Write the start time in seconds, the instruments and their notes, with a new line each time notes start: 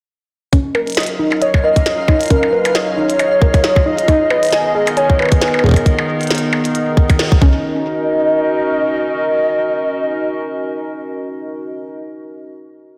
0.53 ambient pad F#3 C#4 D#4 A#4 D#5, synth pluck C#4, synth texture F4 F5, kick, closed hi-hat
0.75 synth pluck A#4, percussion blips
0.87 closed hi-hat
0.90 closed hi-hat
0.92 closed hi-hat
0.95 synth pluck D#5, snare, closed hi-hat
0.97 closed hi-hat, percussion blips
1.00 closed hi-hat
1.03 closed hi-hat
1.06 closed hi-hat
1.19 synth pluck D#4
1.32 percussion blips
1.42 soft synth lead C#5, synth pluck D#5, closed hi-hat
1.54 kick, percussion blips
1.64 synth pluck A#4, soft synth lead D#5
1.76 kick, closed hi-hat
1.86 synth pluck D#5, snare, closed hi-hat, percussion blips
2.08 synth pluck D#4, kick, percussion blips
2.21 closed hi-hat
2.23 closed hi-hat
2.26 closed hi-hat
2.28 soft synth lead A#4, closed hi-hat
2.30 synth pluck C#4, ambient pad G#4, kick, closed hi-hat
2.43 percussion blips
2.52 synth pluck A#4, soft synth lead B4
2.65 closed hi-hat, percussion blips
2.74 soft synth lead C#5, synth pluck D#5, snare, closed hi-hat
2.97 synth pluck D#4
3.10 closed hi-hat
3.19 synth pluck D#5, closed hi-hat, percussion blips
3.42 synth pluck A#4, kick
3.54 kick, closed hi-hat, percussion blips
3.64 synth pluck D#5, snare, closed hi-hat
3.76 kick, percussion blips
3.86 synth pluck D#4, soft synth lead D#5
3.99 closed hi-hat
4.08 ambient pad D#3 B3 D#4 A#4, synth pluck D#4, kick, closed hi-hat, percussion blips
4.30 synth pluck B4, percussion blips
4.43 closed hi-hat
4.45 closed hi-hat
4.47 closed hi-hat
4.51 snare, closed hi-hat
4.53 synth pluck G#5, closed hi-hat
4.75 synth pluck G#4
4.87 closed hi-hat, percussion blips
4.97 soft synth lead C#5, synth pluck G#5, closed hi-hat
5.10 kick
5.19 synth pluck B4, percussion blips
5.22 percussion blips
5.25 percussion blips
5.29 kick, closed hi-hat, percussion blips
5.37 soft synth lead C#5
5.41 soft synth lead B4, synth pluck G#5, snare, closed hi-hat, percussion blips
5.48 percussion blips
5.54 percussion blips
5.59 percussion blips
5.64 synth pluck G#4, soft synth lead A#4, kick
5.66 kick
5.69 kick
5.71 kick
5.74 kick, closed hi-hat, percussion blips
5.86 kick, closed hi-hat
5.99 percussion blips
6.21 closed hi-hat
6.23 closed hi-hat
6.27 snare, closed hi-hat
6.31 closed hi-hat, percussion blips
6.35 closed hi-hat
6.38 closed hi-hat
6.53 percussion blips
6.65 closed hi-hat
6.75 closed hi-hat
6.97 kick
7.10 kick, closed hi-hat, percussion blips
7.19 snare
7.32 kick
7.41 ambient pad C#4 D#4 F#4 A#4 D#5, synth pluck C#4, soft synth lead D#5, kick